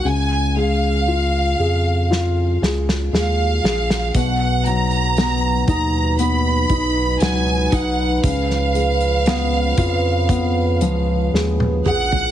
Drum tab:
HH |----------------|x-xxx-x-x-x-x-x-|x-xxx-x-x-x-----|
SD |--------o-ooo-oo|----o-------o---|-o--o-------o---|
T1 |----------------|----------------|-------------o--|
T2 |----------------|----------------|--------------o-|
FT |----------------|----------------|---------------o|
BD |----------------|o-----o---o---o-|o-----o-o-------|